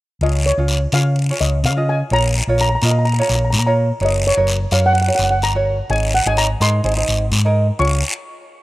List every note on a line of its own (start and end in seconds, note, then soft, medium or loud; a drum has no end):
0.21 0.50 C#2 medium
0.21 0.43 F4 medium
0.21 0.44 G#4 medium
0.21 0.44 C#5 medium
0.21 0.47 D#5 medium
0.21 long guiro medium
0.46 0.95 C#5 medium
0.58 0.85 C#2 medium
0.58 0.79 F4 medium
0.58 0.79 G#4 medium
0.58 0.80 C#5 medium
0.68 short guiro medium
0.92 1.30 C#3 medium
0.92 1.15 F4 medium
0.92 1.15 G#4 medium
0.92 1.15 C#5 medium
0.92 1.42 F5 medium
0.92 short guiro medium
1.16 long guiro medium
1.30 1.58 F4 medium
1.30 1.58 G#4 soft
1.30 1.58 C#5 medium
1.40 1.65 C#2 medium
1.40 1.63 D#5 medium
1.40 short guiro medium
1.64 2.02 C#3 medium
1.64 1.89 F5 medium
1.64 short guiro medium
1.76 1.98 F4 medium
1.76 1.98 G#4 medium
1.76 1.98 D#5 medium
1.89 2.13 G#5 medium
2.10 2.40 A#1 medium
2.10 2.33 F4 medium
2.10 2.33 A#4 medium
2.10 2.33 C#5 medium
2.10 2.60 A#5 medium
2.10 long guiro medium
2.47 2.75 A#1 medium
2.47 2.69 F4 medium
2.47 2.69 A#4 medium
2.47 2.70 C#5 medium
2.58 2.67 A#5 medium
2.58 short guiro medium
2.69 2.74 A#5 medium
2.75 2.81 A#5 medium
2.82 3.20 A#2 medium
2.82 3.04 F4 medium
2.82 3.04 A#4 medium
2.82 3.05 D#5 medium
2.82 2.89 A#5 medium
2.82 short guiro medium
2.91 2.97 A#5 medium
2.99 3.04 A#5 medium
3.05 3.12 A#5 medium
3.05 long guiro medium
3.13 3.20 A#5 soft
3.19 3.47 F4 medium
3.19 3.47 A#4 soft
3.19 3.47 C#5 medium
3.19 3.27 A#5 medium
3.28 3.54 A#1 medium
3.28 3.34 A#5 soft
3.28 short guiro medium
3.35 3.42 A#5 medium
3.45 3.49 A#5 soft
3.50 3.91 A#2 medium
3.50 3.56 A#5 medium
3.50 short guiro medium
3.59 3.65 A#5 medium
3.67 3.87 F4 medium
3.67 3.88 A#4 medium
3.67 3.88 C#5 medium
3.67 3.72 A#5 medium
4.00 4.30 F#1 loud
4.00 4.23 F#4 medium
4.00 4.23 A#4 medium
4.00 4.23 C#5 medium
4.00 long guiro medium
4.05 4.25 D#5 medium
4.27 4.70 C#5 medium
4.37 4.65 F#1 medium
4.37 4.58 F#4 medium
4.37 4.58 A#4 medium
4.37 4.59 C#5 medium
4.47 short guiro medium
4.71 5.09 F#2 medium
4.71 4.93 F#4 medium
4.71 4.93 A#4 medium
4.71 4.94 C#5 medium
4.71 4.85 F5 medium
4.71 short guiro medium
4.86 4.92 F#5 medium
4.93 5.00 F#5 medium
4.93 long guiro medium
5.02 5.07 F#5 medium
5.07 5.36 F#4 medium
5.07 5.36 A#4 medium
5.07 5.36 C#5 medium
5.07 5.14 F#5 medium
5.15 5.42 F#1 medium
5.15 5.22 F#5 medium
5.15 short guiro medium
5.23 5.29 F#5 medium
5.31 5.37 F#5 medium
5.42 5.80 G1 medium
5.42 5.92 A#5 medium
5.42 short guiro medium
5.55 5.76 F#4 medium
5.55 5.77 A#4 medium
5.55 5.77 C#5 medium
5.89 6.19 G#1 loud
5.89 6.11 D#4 medium
5.89 6.11 G#4 soft
5.89 6.12 C#5 medium
5.89 6.15 G#5 medium
5.89 long guiro medium
6.15 6.26 F#5 medium
6.26 6.54 G#1 medium
6.26 6.47 D#4 medium
6.26 6.48 G#4 medium
6.26 6.48 C#5 medium
6.26 6.38 G#5 medium
6.37 6.62 A#5 medium
6.37 short guiro medium
6.60 6.79 G#2 medium
6.60 6.82 D#4 medium
6.60 6.82 G#4 medium
6.60 6.82 A#4 medium
6.60 7.29 C6 medium
6.60 short guiro medium
6.84 7.03 G#1 medium
6.84 6.95 D#4 medium
6.84 6.95 G#4 medium
6.84 6.95 C5 medium
6.84 long guiro medium
6.96 7.25 D#4 medium
6.96 7.25 G#4 medium
6.96 7.25 C5 medium
7.08 7.33 G#1 medium
7.08 short guiro medium
7.32 7.70 G#2 medium
7.32 short guiro medium
7.45 7.66 D#4 medium
7.45 7.66 G#4 medium
7.45 7.67 A#4 medium
7.79 8.02 C#2 medium
7.79 8.01 F4 medium
7.79 8.02 G#4 medium
7.79 8.01 C#5 medium
7.79 8.02 C#6 medium
7.79 long guiro medium